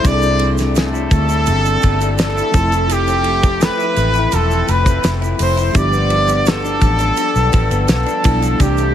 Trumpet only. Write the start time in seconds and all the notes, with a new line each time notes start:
0.07 D5
0.78 A4
2.21 A4
2.93 G4
3.63 B4
4.34 A4
4.70 B4
5.41 C5
5.77 D5
6.48 A4
7.90 A4
8.61 G4